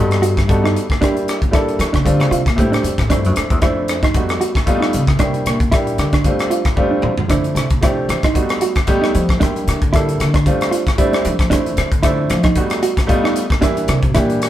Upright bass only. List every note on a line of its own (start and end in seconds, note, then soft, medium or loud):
0.00 0.75 G2 medium
1.79 1.93 E3 medium
1.95 2.06 C#3 medium
2.06 2.19 D3 medium
2.19 2.30 C#3 medium
2.31 2.47 C3 medium
2.47 2.58 A#2 medium
2.58 2.72 A2 medium
2.73 2.83 C2 soft
2.83 2.97 F2 medium
2.99 3.10 A2 medium
3.10 3.26 G2 medium
3.26 3.36 F#2 medium
3.37 3.51 F2 medium
3.51 3.62 E2 medium
3.63 4.37 F2 medium
4.94 5.19 C#3 medium
5.20 5.45 C3 medium
5.46 5.95 A#2 medium
5.98 6.24 D3 medium
7.02 7.28 E3 medium
7.30 7.54 D3 medium
7.55 8.04 C3 medium
8.09 8.34 E3 medium
9.15 9.40 F3 medium
9.42 9.67 E3 medium
9.68 10.16 D3 medium
10.20 10.45 D3 medium
11.25 11.51 F3 medium
11.52 11.77 E3 medium
11.78 12.27 D3 medium
12.30 12.46 F3 loud
13.88 14.14 C3 medium
14.15 14.49 A#2 medium